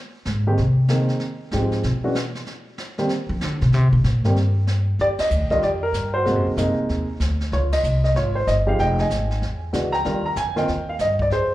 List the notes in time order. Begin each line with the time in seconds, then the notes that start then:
0.25 G#2, snare
0.47 D#3 G#3 A#3 C4 G4
0.57 C3, brush sweep, snare
0.88 D#3 G#3 A#3 C4 D#4, snare
1.08 snare
1.20 brush sweep, snare
1.51 G#2 F3 G#3 C4 D#4 G4, snare
1.72 snare
1.83 B2, brush sweep, snare
2.04 E3 G#3 C#4 D4 F#4
2.15 snare
2.35 snare
2.46 brush sweep, snare
2.78 snare
2.98 D#3 G3 A#3 C4 G4, snare
3.09 brush sweep, snare
3.29 F3
3.41 D3, snare
3.61 B2, snare
3.72 C3, brush sweep, snare
3.93 B2
4.04 A#2, snare
4.24 G2 D#3 G3 A#3 C4 G4, snare
4.36 brush sweep, snare
4.67 snare
4.99 D#2 G4 D5, brush sweep, snare
5.19 D#5, muted upright bass stroke, snare, ride
5.30 D2, hi-hat pedal
5.41 A#1
5.50 G1 D#3 G3 D4 F4 D#5, kick, snare
5.62 F2 G4 D5, brush sweep, snare
5.83 A#4
5.93 G2, snare, hi-hat pedal
6.14 F#4 C5
6.25 G#2 C3 G#3 A#3 F#4, brush sweep, snare
6.36 F#2
6.46 D#2
6.57 F#2 C3 G#3 A#3 D#4, snare, hi-hat pedal
6.78 muted upright bass stroke
6.89 D#2, brush sweep, snare
7.20 D2, snare, hi-hat pedal
7.40 snare
7.52 C#2 F4 C#5, brush sweep, snare
7.72 D#5, snare, ride
7.83 C2, hi-hat pedal
8.04 D#5, snare
8.15 G#1 F4 C#5, brush sweep, snare
8.35 C5
8.47 G1 D#5, snare, hi-hat pedal
8.67 F3 G#3 D#4 G4 F5
8.79 F1 D#5 G5, brush sweep, snare
8.99 D#5 G#5, snare
9.10 G#1, snare, hi-hat pedal
9.31 snare
9.42 E2, brush sweep, snare
9.73 C#2 E3 G#3 D4 F#4, snare, hi-hat pedal
9.92 G5 A#5, snare
10.05 D#2 D#3 G3 D4 F4, brush sweep, snare
10.26 A#5
10.36 F2 G#5, snare, hi-hat pedal
10.56 D#3 A#3 C4 F4 D#5 G5, snare
10.68 D#2, brush sweep, snare
10.89 F5
10.99 G2 D#5, snare, hi-hat pedal
11.19 D5, kick
11.30 F2 G#4 C5, brush sweep, snare